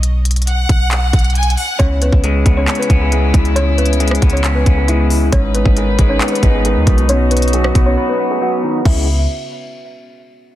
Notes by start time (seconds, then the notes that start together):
Already playing: B1
0.03 closed hi-hat
0.25 closed hi-hat
0.31 closed hi-hat
0.36 closed hi-hat
0.42 closed hi-hat
0.47 F#5, closed hi-hat
0.69 B1, kick, closed hi-hat
0.91 clap, closed hi-hat
1.13 B1, kick, closed hi-hat
1.19 closed hi-hat
1.24 closed hi-hat
1.30 closed hi-hat
1.35 G#5, closed hi-hat
1.43 closed hi-hat
1.50 closed hi-hat
1.57 F#5, open hi-hat
1.79 C#2 C#3 B3 C#4 E4 C#5, kick, closed hi-hat
2.02 B3 B4, closed hi-hat
2.13 C#2, kick
2.24 G#3 G#4 G#5, closed hi-hat
2.46 C#2 B3, kick, closed hi-hat
2.57 C#4 C#5
2.68 C#4, clap, closed hi-hat
2.75 closed hi-hat
2.79 B3 B4, closed hi-hat
2.90 C#2 B3, kick, closed hi-hat
3.01 G#4 G#5
3.12 G#3 G#4 G#5, closed hi-hat
3.34 C#2 E3, kick, closed hi-hat
3.45 closed hi-hat
3.56 C#3 C#4 C#5, closed hi-hat
3.78 B3 B4, closed hi-hat
3.86 closed hi-hat
3.93 closed hi-hat
4.00 G#3 G#4 G#5, closed hi-hat
4.08 cross-stick, closed hi-hat
4.15 closed hi-hat
4.22 C#2 B3, kick, closed hi-hat
4.30 C#5, closed hi-hat
4.34 C#4, closed hi-hat
4.44 C#4, clap, closed hi-hat
4.55 B3 B4
4.66 C#2 B3, kick, closed hi-hat
4.77 G#4 G#5
4.88 G#3 E4 E5, closed hi-hat
5.10 E3, open hi-hat
5.32 G#1 G#2 G#3 C#4 D#4 B4 C#5, kick, closed hi-hat
5.54 B3 B4, closed hi-hat
5.65 G#1, kick
5.77 D#3 G#4 G#5, closed hi-hat
5.99 G#1 G#3, kick, closed hi-hat
6.09 C#4 C#5
6.21 B3, clap, closed hi-hat
6.28 closed hi-hat
6.32 B3 B4, closed hi-hat
6.43 G#1 G#3, kick, closed hi-hat
6.54 G#4 G#5
6.65 D#3 G#4 G#5, closed hi-hat
6.76 D#2
6.87 B1 B2, kick, closed hi-hat
6.98 closed hi-hat
7.09 B2 B3 C#4 F#4 C#5, closed hi-hat
7.31 B3 B4, closed hi-hat
7.37 closed hi-hat
7.42 closed hi-hat
7.48 closed hi-hat
7.53 F#3 G#4 G#5, closed hi-hat
7.64 cross-stick
7.75 B1 B3, kick, closed hi-hat
7.86 C#4 C#5
7.97 B4
8.09 B3 B4
8.19 B3
8.31 G#4 G#5
8.41 F#3 F#4 F#5
8.63 D#3
8.85 C#2 C#3 E3 G#3 B3 E4 E5, kick, crash